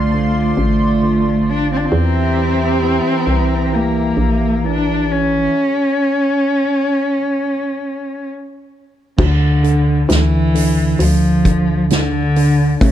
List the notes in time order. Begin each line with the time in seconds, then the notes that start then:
Already playing: C2 D3 A3 F4 D5 C6
0.14 D3
0.57 A1 A3
1.02 D3
1.49 D4
1.73 C4
1.77 D4
1.86 C4
1.92 E2 E3 G4 E5 A#5
2.37 E3
2.83 E3
3.27 C2 E3
3.72 E3 A#3
4.17 A#1
4.64 E3 D4
5.10 C#4
9.18 D2 D3, kick, crash
9.63 D3, hi-hat pedal, open hi-hat
10.09 D2 D3 E3, snare, hi-hat pedal, open hi-hat
10.55 D3, hi-hat pedal, open hi-hat
10.99 D2 D3 F3, hi-hat pedal, open hi-hat
11.44 D3, kick, hi-hat pedal, open hi-hat
11.90 D3, snare, hi-hat pedal, open hi-hat
12.36 D3, hi-hat pedal, open hi-hat
12.81 A1 C#3 A3, kick, hi-hat pedal, open hi-hat